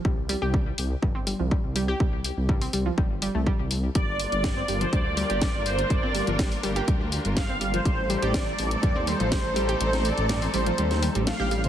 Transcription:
<<
  \new Staff \with { instrumentName = "Supersaw synth" } { \time 4/4 \key g \minor \tempo 4 = 123 r1 | r1 | d''8. d''4 c''16 d''8 d''4 c''8 | d''4 r2 f''8. c''16~ |
c''8. d''4 d''8. c''4. | c''8 d''4 c''4 r8 f''8. c''16 | }
  \new Staff \with { instrumentName = "String section" } { \time 4/4 \key g \minor << { r1 | r1 | <bes d' f' bes'>1~ | <bes d' f' bes'>1 |
<a c' ees' a'>1~ | <a c' ees' a'>1 | } \\ { r1 | r1 | g1~ | g1~ |
g1~ | g1 | } >> }
  \new Staff \with { instrumentName = "Synth pluck" } { \clef bass \time 4/4 \key g \minor g16 r16 g16 g'16 g16 r8. g,16 c'16 g16 f16 g16 r16 g16 g'16 | g16 r8. g,16 c'16 g16 f16 g16 r16 g16 a16 g16 r8. | g16 r8. g,16 c'16 g16 f16 g16 r16 g16 g'16 g16 r8. | g,16 c'16 g16 f16 g16 r16 g16 g'16 g16 r8. g,16 c'16 g16 f16 |
g16 r16 g16 g'16 g16 r8. g,16 c'16 g16 f16 g16 r16 g16 g'16 | g16 r8. g,16 c'16 g16 f16 g16 r16 g16 g16 a16 g'16 g16 r16 | }
  \new Staff \with { instrumentName = "Detuned saw bass" } { \clef bass \time 4/4 \key g \minor c,8. c,8. c,16 r16 g,,8. c,16 r16 c,8. | c,8. c,8. c,16 r16 g,,8. c,16 r16 c,8. | g,,8. g,,8. g,,16 r16 d,8. g,,16 r16 g,,8. | g,,8. g,,8. g,,16 r16 d,8. g,,16 r16 g,,8. |
a,,8. a,,8. a,,16 r16 ees,8. a,,16 r16 a,,8. | a,,8. a,,8. a,,16 r16 ees,8. a,,16 r16 a,,8. | }
  \new DrumStaff \with { instrumentName = "Drums" } \drummode { \time 4/4 bd8 hho8 bd8 hho8 bd8 hho8 bd8 hho8 | bd8 hho8 bd16 hho16 hho8 bd8 hho8 bd8 hho8 | <hh bd>8 hho16 hh16 <hh bd sn>8 hho16 hh16 <hh bd>8 hho16 hh16 <hh bd sn>8 hho16 hh16 | <hh bd>8 hho16 hh16 <hh bd sn>16 hho16 hho16 hh16 <hh bd>8 hho16 hh16 <hh bd sn>8 hho16 hh16 |
<hh bd>8 hho16 hh16 <hh bd sn>8 hho16 hh16 <hh bd>8 hho16 hh16 <hh bd sn>8 hho16 hh16 | hh16 <hh sn>16 hho16 hh16 <hh sn>16 hho16 hho16 hh16 hh16 <hh sn>16 hho16 hh16 <hh sn tommh>16 tommh16 hho16 <hh toml>16 | }
>>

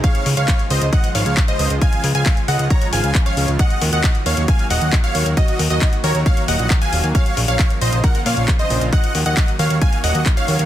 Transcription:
<<
  \new Staff \with { instrumentName = "Synth pluck" } { \time 4/4 \key ees \dorian \tempo 4 = 135 f''8 r16 f''8 r16 ees''16 r16 ges''16 r16 f''8 r16 ees''8 r16 | aes''8 r16 aes''8 r16 ges''16 r16 bes''16 r16 aes''8 r16 f''8 r16 | ges''8 r16 ges''8 r16 f''16 r16 aes''16 r16 ges''8 r16 f''8 r16 | ees''8 r16 ees''8 r16 des''16 r16 f''16 r16 ges''8 r16 aes''8 r16 |
f''8 r16 f''8 r16 ees''16 r16 ges''16 r16 f''8 r16 ees''8 r16 | ges''8 r16 ges''8 r16 f''16 r16 aes''16 r16 ges''8 r16 f''8 r16 | }
  \new Staff \with { instrumentName = "Supersaw synth" } { \time 4/4 \key ees \dorian <des'' f''>8 r16 <des'' f''>8 r16 <c'' ees''>16 r16 <ees'' ges''>16 r16 <des'' f''>8 r16 <c'' ees''>8 r16 | <f'' aes''>8 r16 <f'' aes''>8 r16 <ees'' ges''>16 r16 <des'' bes''>16 r16 <f'' aes''>8 r16 <des'' f''>8 r16 | <ees'' ges''>8 r16 <ees'' ges''>8 r16 <des'' f''>16 r16 <f'' aes''>16 r16 <ees'' ges''>8 r16 <des'' f''>8 r16 | <ges' ees''>8 r16 <ges' ees''>8 r16 <bes' des''>16 r16 <des'' f''>16 r16 <ees'' ges''>8 r16 <f'' aes''>8 r16 |
<des'' f''>8 r16 <des'' f''>8 r16 <c'' ees''>16 r16 <bes' ges''>16 r16 <des'' f''>8 r16 <c'' ees''>8 r16 | <ees'' ges''>8 r16 <ees'' ges''>8 r16 <des'' f''>16 r16 <f'' aes''>16 r16 <ees'' ges''>8 r16 <des'' f''>8 r16 | }
  \new Staff \with { instrumentName = "Analog synth bass" } { \clef bass \time 4/4 \key ees \dorian r8 des,16 des,16 r8 des,16 des,16 r8 aes,,16 des,16 r8 des,16 des,16 | r8 des,16 des,16 r8 des,16 des,16 r8 aes,,16 des,16 r8 des,16 des,16 | r8 ees,16 ees,16 r8 ees,16 ees,16 r8 ees,,16 ees,16 r8 ees,16 ees,16 | r8 ees,16 ees,16 r8 ees,16 ees,16 r8 ees,,16 bes,,16 r8 ees,,16 ees,16 |
r8 bes,,16 bes,,16 r8 bes,,16 bes,,16 r8 bes,16 bes,,16 r8 bes,,16 bes,,16 | r8 ees,16 ees,16 r8 ees,16 ees,16 r8 ees,,16 ees,16 r8 ees,16 ees,16 | }
  \new DrumStaff \with { instrumentName = "Drums" } \drummode { \time 4/4 <hh bd>16 hh16 hho16 hh16 <hc hh bd>16 hh16 hho16 hh16 <hh bd>16 hh16 hho16 hh16 <hc hh bd>16 hh16 hho16 hh16 | <hh bd>16 hh16 hho16 hh16 <hc hh bd>16 hh16 hho16 hh16 <hh bd>16 hh16 hho16 hh16 <hc hh bd>16 hh16 hho16 hh16 | <hh bd>16 hh16 hho16 hh16 <hc hh bd>16 hh16 hho16 hh16 <hh bd>16 hh16 hho16 hh16 <hc hh bd>16 hh16 hho16 hh16 | <hh bd>16 hh16 hho16 hh16 <hc hh bd>16 hh16 hho16 hh16 <hh bd>16 hh16 hho16 hh16 <hc hh bd>16 hh16 hho16 hh16 |
<hh bd>16 hh16 hho16 hh16 <hc hh bd>16 hh16 hho16 hh16 <hh bd>16 hh16 hho16 hh16 <hc hh bd>16 hh16 hho16 hh16 | <hh bd>16 hh16 hho16 hh16 <hc hh bd>16 hh16 hho16 hh16 <hh bd>16 hh16 hho16 hh16 <hc hh bd>16 hh16 hho16 hh16 | }
>>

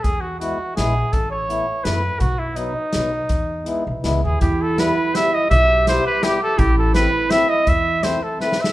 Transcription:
<<
  \new Staff \with { instrumentName = "Trumpet" } { \time 3/4 \key e \major \tempo 4 = 165 gis'8 fis'8 fis'4 gis'4 | a'8 cis''4. b'4 | fis'8 e'8 dis'2~ | dis'2 r8 gis'8 |
\key e \minor g'8 a'8 b'4 e''8 dis''8 | e''4 c''8 b'8 g'8 a'8 | g'8 a'8 b'4 e''8 dis''8 | e''4 c''8 a'8 b'8 e''8 | }
  \new Staff \with { instrumentName = "Clarinet" } { \time 3/4 \key e \major r2. | r2. | r2. | r2. |
\key e \minor e'2. | g'2. | e'2.~ | e'4.~ e'16 r4 r16 | }
  \new Staff \with { instrumentName = "Accordion" } { \time 3/4 \key e \major r4 <gis b e'>8 r8 <gis b e'>8 r8 | r4 <a b e'>8 r8 <a b e'>8 r8 | r4 <fis b dis'>8 r8 <fis b dis'>8 r8 | r4 <gis b e'>8 r8 <gis b e'>8 r8 |
\key e \minor r4 <g b e'>8 r8 <g b e'>8 r8 | r4 <g b e'>8 r8 <g b e'>8 r8 | r4 <a c' e'>8 r8 <a c' e'>8 r8 | r4 <a c' e'>8 r8 <a c' e'>8 r8 | }
  \new Staff \with { instrumentName = "Upright bass" } { \clef bass \time 3/4 \key e \major e,2 ais,,4 | a,,2 fis,4 | b,,2 b,,4 | e,4. b,,8 cis,8 dis,8 |
\key e \minor e,2 r4 | b,,2 r4 | a,,2 r4 | e,2 r4 | }
  \new DrumStaff \with { instrumentName = "Drums" } \drummode { \time 3/4 <hh bd>4 hh4 <hh sn>4 | <hh bd>4 hh4 <hh sn>4 | <hh bd>4 hh4 <hh sn>4 | <hh bd>4 hh4 <hh sn>4 |
<hh bd>4 <hh sn>4 <hh sn>4 | <hh bd>4 <hh sn>4 <hh sn>4 | <hh bd>4 <hh sn>4 <hh sn>4 | <hh bd>4 <hh sn>4 \tuplet 3/2 { sn8 sn8 sn8 } | }
>>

